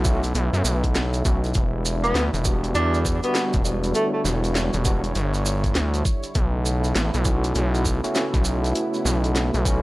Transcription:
0.00 0.33 B1 loud
0.00 1.51 C#3 medium
0.00 1.51 A3 medium
0.00 3.91 B3 medium
0.00 6.31 E4 medium
0.05 0.20 A3 loud
0.05 0.20 C#4 medium
0.05 0.20 E4 medium
0.05 0.20 F#4 loud
0.05 kick loud
0.05 maracas medium
0.23 closed hi-hat medium
0.23 maracas soft
0.35 0.51 B1 loud
0.35 closed hi-hat medium
0.35 maracas medium
0.53 0.63 F#2 loud
0.53 maracas soft
0.64 1.23 B1 medium
0.64 maracas medium
0.84 kick medium
0.84 closed hi-hat medium
0.84 maracas soft
0.95 snare loud
0.95 closed hi-hat medium
0.95 maracas medium
1.14 closed hi-hat soft
1.14 maracas soft
1.25 1.53 B1 loud
1.25 1.40 A3 medium
1.25 1.40 C#4 medium
1.25 1.40 E4 medium
1.25 1.40 F#4 medium
1.25 kick loud
1.25 maracas medium
1.44 closed hi-hat soft
1.44 maracas soft
1.54 2.13 E1 loud
1.54 6.31 D3 medium
1.54 6.31 G3 medium
1.54 kick loud
1.54 closed hi-hat medium
1.54 maracas medium
1.85 maracas medium
2.04 2.25 B3 loud
2.04 closed hi-hat soft
2.04 maracas soft
2.15 2.31 D2 medium
2.15 snare loud
2.15 closed hi-hat medium
2.15 maracas medium
2.33 2.73 E1 loud
2.33 closed hi-hat soft
2.33 maracas soft
2.45 3.19 G3 medium
2.45 3.19 B3 medium
2.45 3.19 D4 medium
2.45 3.19 F#4 medium
2.45 kick loud
2.45 maracas loud
2.64 closed hi-hat soft
2.64 maracas soft
2.75 3.21 E2 loud
2.75 3.00 D4 medium
2.75 closed hi-hat medium
2.75 maracas soft
2.94 maracas soft
3.05 kick medium
3.05 cross-stick soft
3.05 maracas loud
3.23 4.82 G3 medium
3.23 4.82 B3 medium
3.23 3.45 B3 medium
3.23 4.82 D4 medium
3.23 4.82 F#4 loud
3.23 closed hi-hat medium
3.23 maracas soft
3.35 snare loud
3.35 closed hi-hat medium
3.35 maracas medium
3.53 3.93 E1 medium
3.53 kick loud
3.53 closed hi-hat soft
3.53 maracas soft
3.65 maracas medium
3.84 closed hi-hat soft
3.84 maracas soft
3.94 4.07 A3 medium
3.94 6.33 C#5 medium
3.94 closed hi-hat medium
3.94 maracas medium
4.14 4.21 A3 medium
4.25 4.71 E1 loud
4.25 snare soft
4.25 maracas medium
4.44 closed hi-hat soft
4.44 maracas soft
4.55 snare loud
4.55 closed hi-hat medium
4.55 maracas soft
4.73 5.13 E1 medium
4.73 closed hi-hat soft
4.73 maracas soft
4.85 5.00 G3 loud
4.85 5.00 B3 medium
4.85 5.00 D4 medium
4.85 5.00 F#4 loud
4.85 kick loud
4.85 maracas medium
5.04 closed hi-hat soft
5.04 maracas soft
5.15 5.73 G1 loud
5.15 closed hi-hat medium
5.15 maracas medium
5.34 maracas soft
5.46 maracas medium
5.64 kick medium
5.64 closed hi-hat medium
5.64 maracas soft
5.75 6.03 D2 loud
5.75 snare loud
5.75 closed hi-hat medium
5.75 maracas medium
5.94 closed hi-hat soft
5.94 maracas soft
6.05 kick loud
6.05 maracas medium
6.23 closed hi-hat soft
6.23 maracas soft
6.35 6.93 B1 loud
6.35 9.82 C#3 medium
6.35 9.82 A3 medium
6.35 9.82 B3 medium
6.35 9.82 E4 medium
6.35 kick loud
6.35 closed hi-hat medium
6.35 maracas soft
6.66 maracas medium
6.84 closed hi-hat soft
6.84 maracas soft
6.96 7.11 A1 medium
6.96 snare loud
6.96 closed hi-hat medium
6.96 maracas medium
7.14 7.54 B1 medium
7.14 closed hi-hat soft
7.14 maracas soft
7.25 7.99 A3 medium
7.25 7.99 C#4 medium
7.25 7.99 E4 medium
7.25 7.99 F#4 loud
7.25 kick loud
7.25 maracas medium
7.44 closed hi-hat medium
7.44 maracas soft
7.55 8.01 B1 loud
7.55 closed hi-hat medium
7.55 maracas medium
7.75 maracas soft
7.85 kick medium
7.85 maracas loud
8.04 9.62 A3 medium
8.04 9.62 C#4 medium
8.04 9.62 E4 medium
8.04 9.62 F#4 loud
8.04 closed hi-hat medium
8.04 maracas soft
8.15 snare loud
8.15 closed hi-hat medium
8.15 maracas medium
8.34 8.73 B1 loud
8.34 kick loud
8.34 closed hi-hat soft
8.34 maracas soft
8.45 maracas medium
8.64 closed hi-hat soft
8.64 maracas soft
8.75 closed hi-hat medium
8.75 maracas soft
8.94 maracas soft
9.05 9.51 B1 medium
9.05 snare soft
9.05 maracas medium
9.24 closed hi-hat soft
9.24 maracas soft
9.35 snare loud
9.35 closed hi-hat medium
9.35 maracas medium
9.54 9.82 B1 medium
9.54 closed hi-hat soft
9.54 maracas soft
9.65 9.80 A3 medium
9.65 9.80 C#4 medium
9.65 9.80 E4 medium
9.65 9.80 F#4 loud
9.65 kick loud
9.65 maracas loud

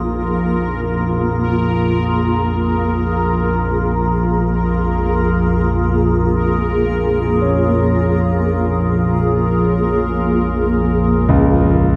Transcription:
0.00 11.96 A#1 medium
0.00 11.96 F2 medium
0.00 2.36 D#3 soft
0.00 11.96 A#3 medium
0.00 11.96 F4 medium
0.00 11.96 G#4 medium
0.00 11.96 A#4 medium
7.42 11.96 C#4 medium
11.29 11.96 C#2 medium

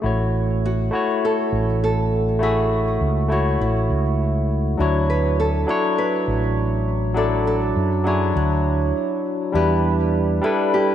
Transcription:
0.02 0.89 A1 medium
0.02 0.89 A3 medium
0.02 0.90 E4 medium
0.02 0.90 F#4 medium
0.06 0.91 C#5 medium
0.66 1.20 F#4 medium
0.91 2.37 A3 medium
0.91 2.38 E4 medium
0.91 2.39 F#4 medium
0.95 2.40 C#5 medium
1.25 1.82 A4 loud
1.52 2.97 A1 medium
1.84 2.42 A4 loud
2.39 3.26 A3 medium
2.39 3.27 E4 medium
2.39 3.28 F#4 medium
2.39 3.27 G#4 loud
2.44 3.29 E5 medium
3.01 3.56 C#2 medium
3.29 4.75 A3 medium
3.29 4.76 E4 medium
3.29 4.76 F#4 medium
3.29 3.59 F#4 medium
3.33 4.77 C#5 medium
3.60 3.89 A1 medium
3.60 4.46 E4 medium
3.90 4.75 C#2 medium
4.77 5.64 D2 medium
4.77 5.64 F#3 medium
4.77 5.65 D4 medium
4.77 5.66 E4 medium
4.77 5.10 F#4 medium
4.82 5.66 C#5 medium
5.10 5.37 B4 medium
5.40 5.68 A4 loud
5.67 7.13 F#3 medium
5.67 7.14 D4 medium
5.67 7.14 E4 medium
5.67 5.98 A4 loud
5.67 7.15 C#5 medium
5.98 7.17 B4 loud
6.28 7.72 A1 medium
7.14 8.02 F#3 medium
7.14 8.02 D4 medium
7.14 8.03 E4 medium
7.14 7.46 A4 loud
7.18 8.04 D5 medium
7.47 8.06 A4 medium
7.76 8.31 F#2 medium
8.04 9.50 F#3 medium
8.04 9.51 D4 medium
8.04 9.52 E4 medium
8.04 8.36 G#4 medium
8.08 9.52 C#5 medium
8.36 8.91 D2 medium
8.36 9.21 F#4 medium
9.52 10.39 E2 medium
9.52 10.39 G3 medium
9.52 10.40 D4 medium
9.52 10.41 E4 medium
9.52 10.43 G4 loud
9.56 10.41 B4 medium
10.41 10.95 G3 medium
10.41 10.95 D4 medium
10.41 10.95 E4 medium
10.41 10.71 A4 loud
10.46 10.95 B4 medium
10.74 10.95 G4 loud

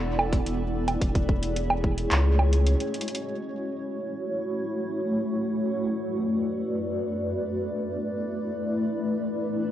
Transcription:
0.00 0.41 E1 loud
0.00 0.97 B3 medium
0.00 2.08 E4 medium
0.00 0.97 A4 medium
0.00 0.97 D5 medium
0.19 high bongo medium
0.33 kick loud
0.33 closed hi-hat soft
0.46 0.96 E1 medium
0.46 closed hi-hat medium
0.88 closed hi-hat soft
0.88 high bongo medium
1.01 2.06 E1 loud
1.01 2.10 A3 medium
1.01 2.10 G#4 medium
1.01 3.19 C#5 medium
1.01 kick loud
1.01 closed hi-hat medium
1.15 kick loud
1.15 closed hi-hat soft
1.29 kick loud
1.43 closed hi-hat medium
1.56 closed hi-hat medium
1.70 high bongo medium
1.84 kick medium
1.98 closed hi-hat medium
2.11 2.75 C#2 loud
2.11 3.20 G#3 medium
2.11 3.20 C#4 medium
2.11 3.20 F#4 medium
2.11 clap loud
2.11 closed hi-hat medium
2.39 high bongo medium
2.53 closed hi-hat medium
2.67 closed hi-hat medium
2.80 closed hi-hat soft
2.94 closed hi-hat medium
3.01 closed hi-hat medium
3.08 closed hi-hat medium
3.15 closed hi-hat medium
3.21 9.71 A3 medium
3.21 5.39 E4 medium
3.21 7.58 F#4 medium
3.21 5.39 C#5 medium
5.42 7.60 F#2 medium
5.42 9.71 B4 medium
5.42 9.71 D5 medium
7.62 9.71 E4 medium

